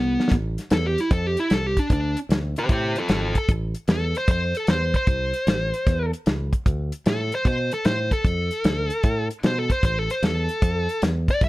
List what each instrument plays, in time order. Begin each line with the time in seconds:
Already playing: fingered electric bass C2, lead electric guitar B3
0.20 snare
0.28 fingered electric bass A1, kick, snare, closed hi-hat
0.58 snare, closed hi-hat
0.70 fingered electric bass E2, lead electric guitar A4, snare, closed hi-hat
0.87 lead electric guitar G4
0.98 lead electric guitar E4, snare, closed hi-hat
1.11 fingered electric bass F2, lead electric guitar A4, kick, closed hi-hat
1.27 lead electric guitar G4
1.37 lead electric guitar E4, closed hi-hat
1.50 fingered electric bass C2, lead electric guitar A4, snare, closed hi-hat
1.67 lead electric guitar G4
1.77 lead electric guitar D4, kick, closed hi-hat
1.90 fingered electric bass D2, lead electric guitar D4, kick, closed hi-hat
2.17 closed hi-hat
2.29 fingered electric bass D2, snare, closed hi-hat
2.56 lead electric guitar G4 C5, closed hi-hat
2.69 fingered electric bass A2, lead electric guitar G4 C5, kick, closed hi-hat
2.96 lead electric guitar F4 A4, closed hi-hat
3.09 fingered electric bass G#1, lead electric guitar F4, snare, closed hi-hat
3.13 lead electric guitar A4
3.35 lead electric guitar A4, kick, closed hi-hat
3.49 fingered electric bass A1, kick, closed hi-hat
3.75 closed hi-hat
3.88 fingered electric bass E2, lead electric guitar A4, snare, closed hi-hat
4.15 lead electric guitar C5, closed hi-hat
4.28 fingered electric bass F2, lead electric guitar C5, kick, closed hi-hat
4.55 lead electric guitar A4, closed hi-hat
4.67 fingered electric bass E2, lead electric guitar C5, snare, closed hi-hat
4.94 lead electric guitar C5, kick, closed hi-hat
5.07 fingered electric bass C2, kick, closed hi-hat
5.34 closed hi-hat
5.47 fingered electric bass A1, snare, closed hi-hat
5.74 closed hi-hat
5.87 fingered electric bass E2, kick, snare, closed hi-hat
6.13 closed hi-hat
6.26 fingered electric bass C#2, snare, closed hi-hat
6.53 kick, closed hi-hat
6.66 fingered electric bass D2, kick, closed hi-hat
6.92 closed hi-hat
7.06 fingered electric bass A2, lead electric guitar A4, snare, closed hi-hat
7.32 lead electric guitar C5, closed hi-hat
7.45 fingered electric bass B2, lead electric guitar C5, kick, snare, closed hi-hat
7.71 lead electric guitar A4, closed hi-hat
7.85 fingered electric bass A2, lead electric guitar C5, snare, closed hi-hat
8.11 lead electric guitar A4, kick, closed hi-hat
8.24 fingered electric bass F2, kick, closed hi-hat
8.51 closed hi-hat
8.64 fingered electric bass D2, snare, closed hi-hat
8.90 closed hi-hat
9.03 fingered electric bass A2, kick, closed hi-hat
9.31 closed hi-hat
9.43 fingered electric bass B2, lead electric guitar C5, snare, closed hi-hat
9.58 lead electric guitar A4
9.70 lead electric guitar C5, kick, closed hi-hat
9.83 fingered electric bass A1, lead electric guitar C5, kick, closed hi-hat
9.99 lead electric guitar A4
10.10 lead electric guitar C5, closed hi-hat
10.22 fingered electric bass E2, lead electric guitar A4, snare, closed hi-hat
10.49 closed hi-hat
10.62 fingered electric bass F2, kick, closed hi-hat
10.89 closed hi-hat
11.02 fingered electric bass E2, snare, closed hi-hat
11.28 lead electric guitar D5, kick, closed hi-hat
11.41 fingered electric bass C2, lead electric guitar E5, kick, closed hi-hat